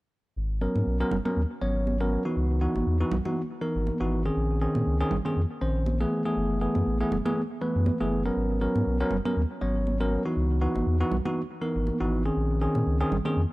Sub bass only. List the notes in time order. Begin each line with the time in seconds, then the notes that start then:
0.36 G#1
0.75 G#2
0.86 B1
1.11 F#1
1.36 D#2
1.61 G#1
2.36 C#2
2.75 G#1
2.86 E2
3.11 B1
3.75 G#1
4.00 G#1
4.36 A#1
4.75 A#2
4.86 C#2
5.11 G#1
5.36 F2
5.61 A#1
6.36 F#1
6.75 F#2
6.86 A1
7.11 E1
7.75 F#2
8.00 F#1
8.36 G#1
8.75 G#2
8.86 B1
9.11 F#1
9.36 D#2
9.61 G#1
10.36 C#2
10.75 G#1
10.86 E2
11.11 B1
11.76 G#1
12.00 G#1
12.36 A#1
12.75 A#2
12.86 C#2
13.11 G#1
13.36 F2